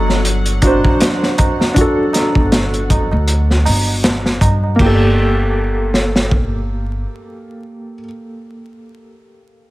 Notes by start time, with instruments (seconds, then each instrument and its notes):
Already playing: upright bass G1, synth drone F#3 F#5, felt piano D4 F#4 A4
0.08 snare, tabla na
0.24 closed hi-hat, tabla na
0.46 closed hi-hat
0.62 felt piano D4 F#4 C5, kick, closed hi-hat, tabla na
0.84 kick, tabla na
1.00 snare, closed hi-hat, tabla na
1.23 snare
1.38 kick, closed hi-hat, tabla na
1.60 snare, tabla na
1.74 felt piano D4 F#4, kick, closed hi-hat, tabla na
1.81 felt piano A4
2.13 snare, closed hi-hat, tabla na
2.35 upright bass G1, kick, tabla na
2.52 snare, closed hi-hat, tabla na
2.74 closed hi-hat
2.90 kick, closed hi-hat, tabla na
3.11 upright bass D2, tabla na
3.28 closed hi-hat, tabla na
3.51 snare
3.66 upright bass G1, open hi-hat, tabla na
3.87 tabla na
4.03 snare, closed hi-hat, tabla na
4.26 snare
4.41 upright bass G2, kick, closed hi-hat, tabla na
4.64 tabla na
4.76 upright bass G1, felt piano A#3, kick, crash
4.81 felt piano G4
4.86 felt piano A4
5.94 snare
6.16 snare
6.31 kick